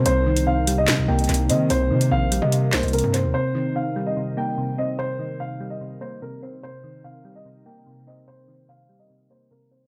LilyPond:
<<
  \new Staff \with { instrumentName = "Grand piano" } { \time 4/4 \key c \minor \tempo 4 = 146 c''4 f''8. ees''8. g''4 ees''8 | c''4 f''8. ees''8. c''8 bes'8 c''8 | c''4 f''8. ees''8. g''4 ees''8 | c''4 f''8. ees''8. c''8 bes'8 c''8 |
c''4 f''8. ees''8. g''4 ees''8 | c''4 f''8. ees''8. c''8 bes'8 c''8 | }
  \new Staff \with { instrumentName = "Ambient pad" } { \time 4/4 \key c \minor <c c' ees' bes'>1~ | <c c' ees' bes'>1~ | <c c' ees' bes'>1~ | <c c' ees' bes'>1 |
<c c' ees' bes'>1~ | <c c' ees' bes'>1 | }
  \new Staff \with { instrumentName = "Synth keys" } { \clef bass \time 4/4 \key c \minor c8 ees8 c8 g8 c8 bes8 c8 c'8 | c8 ees8 c8 g8 c8 bes8 c8 c'8 | c8 ees8 c8 g8 c8 bes8 c8 c'8 | c8 ees8 c8 g8 c8 bes8 c8 c'8 |
c8 ees8 c8 g8 c8 bes8 c8 c'8 | c8 ees8 c8 g8 c8 bes8 c8 c'8 | }
  \new Staff \with { instrumentName = "808-style bass" } { \clef bass \time 4/4 \key c \minor c,2 c16 c,16 c,8 c,8 ees8 | c,8 c8 bes,,8. c8. c,16 c,8 g,8 ees,16 | r1 | r1 |
r1 | r1 | }
  \new DrumStaff \with { instrumentName = "Drums" } \drummode { \time 4/4 hh8. hh16 r8 hh8 <hc hh sn>8. hh32 hh32 hh32 hh16. hh8 | hh8. hh16 r8 hh8 hh8 <hc sn>16 hh32 hh32 hh32 hh16. hh8 | r4 r4 r4 r4 | r4 r4 r4 r4 |
r4 r4 r4 r4 | r4 r4 r4 r4 | }
>>